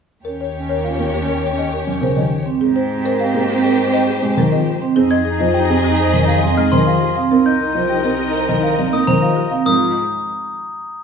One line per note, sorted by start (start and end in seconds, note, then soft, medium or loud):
0.25 2.44 D#2 medium
0.25 0.47 C#4 soft
0.25 2.42 G4 medium
0.25 0.44 A#4 medium
0.25 2.42 C#5 medium
0.41 0.59 C#5 medium
0.57 0.79 C#4 medium
0.69 0.88 A#4 medium
0.69 0.88 C#5 medium
0.84 1.03 F4 medium
0.84 1.03 F5 soft
0.89 1.11 C#4 medium
0.99 1.18 A#3 medium
0.99 1.18 A#4 medium
1.14 1.33 G4 medium
1.20 1.42 C#4 medium
1.28 1.47 A#4 medium
1.43 1.62 C#5 medium
1.51 1.73 C#4 medium
1.58 1.77 D#5 medium
1.73 1.92 A#4 medium
1.83 2.05 C#4 medium
1.87 2.06 G3 medium
2.01 2.21 C#3 medium
2.01 2.21 A#4 medium
2.01 2.21 C5 medium
2.14 2.36 D#3 medium
2.14 2.36 C#4 soft
2.14 2.35 G4 medium
2.14 2.36 D#5 medium
2.46 2.65 C4 medium
2.60 4.80 G#2 medium
2.60 2.82 C4 soft
2.60 4.77 G4 medium
2.60 2.80 G#4 medium
2.60 4.77 C5 medium
2.76 2.95 C5 medium
2.92 3.14 C4 medium
3.05 3.24 A#4 medium
3.05 3.24 C5 medium
3.19 3.38 G4 medium
3.19 3.39 F5 medium
3.24 3.46 C4 medium
3.34 3.53 A#3 medium
3.34 3.53 G#4 medium
3.50 3.68 G4 medium
3.56 3.77 C4 medium
3.64 3.83 G#4 medium
3.64 3.83 A#4 medium
3.79 3.98 C5 medium
3.87 4.09 C4 medium
3.93 4.12 D#5 medium
4.08 4.27 G#4 medium
4.18 4.40 C4 medium
4.22 4.41 G#3 medium
4.37 4.56 D#3 medium
4.37 4.56 A#4 medium
4.49 4.71 F3 medium
4.49 4.72 C4 soft
4.49 4.71 G#4 medium
4.49 4.71 D#5 medium
4.82 5.00 C4 medium
4.95 7.15 F2 medium
4.95 5.15 C4 medium
4.95 5.18 D#4 soft
4.95 7.12 G#4 medium
4.95 5.15 G#4 medium
4.95 7.12 D#5 medium
5.11 5.30 D#4 medium
5.11 5.30 D#5 medium
5.11 5.30 G#6 medium
5.25 5.49 D#4 medium
5.25 5.44 G#4 medium
5.40 5.59 F3 medium
5.40 5.59 C5 medium
5.40 5.59 D#5 medium
5.54 5.74 G4 medium
5.54 5.73 G5 medium
5.58 5.80 D#4 medium
5.69 5.89 C4 medium
5.69 5.88 G#4 medium
5.84 6.03 G4 medium
5.90 6.12 D#4 medium
5.98 6.18 G#4 medium
5.98 6.18 C5 medium
6.14 6.33 D#3 medium
6.14 6.33 D#5 medium
6.22 6.44 D#4 medium
6.28 6.47 G#4 medium
6.28 6.47 F5 medium
6.43 6.62 G3 medium
6.43 6.62 C4 medium
6.43 6.62 G#4 medium
6.54 6.76 D#4 medium
6.54 6.77 D#5 medium
6.54 6.77 F6 medium
6.58 6.77 G#3 medium
6.72 6.91 D#3 medium
6.72 6.91 C5 medium
6.72 6.91 C6 medium
6.85 7.06 F3 medium
6.85 7.07 D#4 soft
6.85 7.06 G#4 medium
6.85 7.06 F5 medium
7.01 7.21 G4 medium
7.16 7.36 C4 medium
7.16 7.35 F5 medium
7.31 9.50 C2 medium
7.31 7.50 C4 medium
7.31 7.53 D#4 soft
7.31 7.50 A#4 medium
7.31 9.48 A#4 medium
7.31 9.48 D#5 medium
7.46 7.65 D#4 medium
7.46 7.65 D#5 medium
7.46 7.65 G6 medium
7.60 7.85 D#4 medium
7.60 7.80 A#4 medium
7.75 7.94 F3 medium
7.75 7.94 C5 medium
7.75 7.94 D#5 medium
7.89 8.15 D#4 medium
7.89 8.09 G4 medium
7.89 8.09 G5 medium
8.04 8.24 C4 medium
8.04 8.24 A#4 medium
8.19 8.38 G4 medium
8.25 8.47 D#4 medium
8.34 8.53 A#4 medium
8.34 8.53 C5 medium
8.48 8.68 D#3 medium
8.48 8.68 D#5 medium
8.57 8.79 D#4 medium
8.63 8.83 A#4 medium
8.63 8.82 F5 medium
8.77 8.97 G3 medium
8.77 8.97 C4 medium
8.77 8.97 A#4 medium
8.88 9.10 D#4 medium
8.93 9.12 A#3 medium
8.93 9.12 D#5 medium
8.93 9.12 D#6 medium
9.07 9.27 D#3 medium
9.07 9.27 C5 medium
9.07 9.27 A#5 medium
9.20 9.41 F3 medium
9.20 9.42 D#4 soft
9.20 9.41 A#4 medium
9.20 9.41 F5 medium
9.36 9.56 G4 medium
9.51 9.71 C4 medium
9.51 9.71 F5 medium
9.66 9.94 G#2 medium
9.66 9.94 F3 medium
9.66 9.93 F4 medium
9.66 9.93 A#4 medium
9.66 9.94 D#6 medium